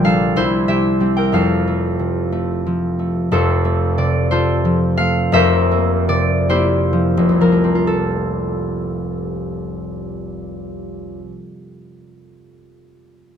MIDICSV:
0, 0, Header, 1, 2, 480
1, 0, Start_track
1, 0, Key_signature, -1, "major"
1, 0, Tempo, 642398
1, 993, Time_signature, 6, 3, 24, 8
1, 993, Tempo, 662252
1, 3393, Tempo, 691244
1, 3873, Tempo, 751880
1, 4353, Tempo, 835655
1, 4833, Tempo, 949367
1, 5313, Tempo, 884956
1, 8298, End_track
2, 0, Start_track
2, 0, Title_t, "Harp"
2, 0, Program_c, 0, 46
2, 0, Note_on_c, 0, 34, 81
2, 0, Note_on_c, 0, 53, 64
2, 0, Note_on_c, 0, 65, 81
2, 0, Note_on_c, 0, 70, 84
2, 0, Note_on_c, 0, 74, 93
2, 0, Note_on_c, 0, 79, 127
2, 29, Note_on_c, 0, 55, 57
2, 33, Note_on_c, 0, 62, 63
2, 35, Note_on_c, 0, 77, 109
2, 41, Note_on_c, 0, 69, 79
2, 271, Note_on_c, 0, 36, 78
2, 274, Note_on_c, 0, 72, 109
2, 281, Note_off_c, 0, 34, 0
2, 282, Note_off_c, 0, 53, 0
2, 283, Note_on_c, 0, 64, 85
2, 285, Note_off_c, 0, 70, 0
2, 286, Note_off_c, 0, 62, 0
2, 286, Note_off_c, 0, 74, 0
2, 288, Note_off_c, 0, 77, 0
2, 291, Note_off_c, 0, 69, 0
2, 293, Note_off_c, 0, 65, 0
2, 507, Note_on_c, 0, 48, 58
2, 509, Note_on_c, 0, 76, 98
2, 518, Note_on_c, 0, 67, 72
2, 740, Note_off_c, 0, 55, 0
2, 749, Note_on_c, 0, 55, 48
2, 755, Note_on_c, 0, 60, 53
2, 862, Note_off_c, 0, 79, 0
2, 871, Note_on_c, 0, 79, 86
2, 880, Note_on_c, 0, 70, 63
2, 987, Note_on_c, 0, 29, 61
2, 994, Note_on_c, 0, 41, 58
2, 999, Note_on_c, 0, 77, 85
2, 1003, Note_on_c, 0, 69, 71
2, 1014, Note_off_c, 0, 48, 0
2, 1014, Note_off_c, 0, 55, 0
2, 1014, Note_off_c, 0, 76, 0
2, 1015, Note_off_c, 0, 36, 0
2, 1018, Note_off_c, 0, 67, 0
2, 1018, Note_off_c, 0, 70, 0
2, 1020, Note_off_c, 0, 64, 0
2, 1079, Note_off_c, 0, 79, 0
2, 1243, Note_on_c, 0, 57, 52
2, 1474, Note_on_c, 0, 48, 47
2, 1704, Note_off_c, 0, 57, 0
2, 1713, Note_on_c, 0, 57, 54
2, 1961, Note_on_c, 0, 53, 47
2, 2189, Note_off_c, 0, 57, 0
2, 2198, Note_on_c, 0, 57, 47
2, 2426, Note_off_c, 0, 29, 0
2, 2427, Note_off_c, 0, 69, 0
2, 2432, Note_on_c, 0, 29, 77
2, 2433, Note_off_c, 0, 41, 0
2, 2438, Note_on_c, 0, 69, 96
2, 2441, Note_off_c, 0, 60, 0
2, 2441, Note_on_c, 0, 41, 72
2, 2445, Note_on_c, 0, 65, 73
2, 2448, Note_off_c, 0, 48, 0
2, 2450, Note_on_c, 0, 60, 71
2, 2665, Note_off_c, 0, 57, 0
2, 2674, Note_on_c, 0, 57, 61
2, 2913, Note_on_c, 0, 48, 56
2, 2915, Note_on_c, 0, 74, 89
2, 3122, Note_off_c, 0, 72, 0
2, 3147, Note_off_c, 0, 57, 0
2, 3152, Note_off_c, 0, 65, 0
2, 3152, Note_on_c, 0, 72, 101
2, 3156, Note_off_c, 0, 69, 0
2, 3156, Note_on_c, 0, 57, 58
2, 3161, Note_on_c, 0, 65, 73
2, 3165, Note_on_c, 0, 69, 72
2, 3323, Note_off_c, 0, 74, 0
2, 3390, Note_off_c, 0, 53, 0
2, 3398, Note_on_c, 0, 53, 60
2, 3617, Note_off_c, 0, 77, 0
2, 3620, Note_off_c, 0, 57, 0
2, 3625, Note_on_c, 0, 77, 125
2, 3629, Note_on_c, 0, 57, 70
2, 3857, Note_off_c, 0, 29, 0
2, 3865, Note_off_c, 0, 41, 0
2, 3865, Note_on_c, 0, 29, 82
2, 3870, Note_off_c, 0, 72, 0
2, 3871, Note_on_c, 0, 41, 81
2, 3875, Note_on_c, 0, 76, 127
2, 3878, Note_on_c, 0, 72, 106
2, 3884, Note_on_c, 0, 70, 98
2, 3890, Note_off_c, 0, 77, 0
2, 3892, Note_off_c, 0, 57, 0
2, 3893, Note_off_c, 0, 48, 0
2, 3894, Note_off_c, 0, 53, 0
2, 3895, Note_off_c, 0, 65, 0
2, 3897, Note_off_c, 0, 69, 0
2, 4117, Note_on_c, 0, 58, 69
2, 4353, Note_on_c, 0, 48, 56
2, 4356, Note_on_c, 0, 74, 113
2, 4581, Note_off_c, 0, 72, 0
2, 4582, Note_off_c, 0, 58, 0
2, 4587, Note_on_c, 0, 58, 64
2, 4590, Note_on_c, 0, 72, 103
2, 4593, Note_on_c, 0, 67, 91
2, 4596, Note_on_c, 0, 64, 81
2, 4758, Note_off_c, 0, 74, 0
2, 4837, Note_on_c, 0, 53, 62
2, 4955, Note_off_c, 0, 29, 0
2, 4961, Note_on_c, 0, 29, 77
2, 4995, Note_off_c, 0, 60, 0
2, 5020, Note_on_c, 0, 36, 59
2, 5075, Note_off_c, 0, 53, 0
2, 5076, Note_off_c, 0, 58, 0
2, 5077, Note_off_c, 0, 70, 0
2, 5079, Note_on_c, 0, 53, 60
2, 5083, Note_on_c, 0, 58, 59
2, 5083, Note_on_c, 0, 70, 87
2, 5137, Note_on_c, 0, 57, 60
2, 5197, Note_on_c, 0, 60, 61
2, 5253, Note_on_c, 0, 65, 58
2, 5315, Note_on_c, 0, 69, 80
2, 5333, Note_off_c, 0, 41, 0
2, 5333, Note_off_c, 0, 48, 0
2, 5333, Note_off_c, 0, 76, 0
2, 5336, Note_off_c, 0, 67, 0
2, 5337, Note_off_c, 0, 58, 0
2, 5337, Note_off_c, 0, 70, 0
2, 5338, Note_off_c, 0, 64, 0
2, 6684, Note_off_c, 0, 72, 0
2, 7110, Note_off_c, 0, 29, 0
2, 7173, Note_off_c, 0, 36, 0
2, 7238, Note_off_c, 0, 53, 0
2, 7299, Note_off_c, 0, 57, 0
2, 7363, Note_off_c, 0, 60, 0
2, 7423, Note_off_c, 0, 65, 0
2, 7489, Note_off_c, 0, 69, 0
2, 8298, End_track
0, 0, End_of_file